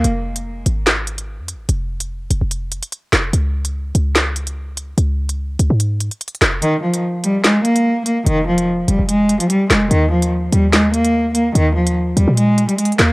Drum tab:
HH |x--------x--------x-----x-----x--x--------x-----|x--------x--------x-----x-----x--x--x-----x-----|x--------x--------x-----x-----x--x--------x-----|x--------x--------x-----x-----x--x--x-x-x-x-----|
CP |------------------------x-----------------------|------------------------------------------x-----|------------------------x-----------------------|------------------------------------------x-----|
SD |------------------------o-----------------------|------------------------------------------o-----|------------------------o-----------------------|------------------------------------------o-----|

HH |x--------x--------x-----x-----x--x--------x-----|x--------x--------x-----x-----x--x--x-----x-----|x--------x--------x-----x-----x--x--------x-----|x--------x--------x-----x-----x--x--x-x-x-x-----|
CP |------------------------x-----------------------|------------------------------------------x-----|------------------------x-----------------------|------------------------------------------x-----|
SD |------------------------o-----------------------|------------------------------------------o-----|------------------------o-----------------------|------------------------------------------o-----|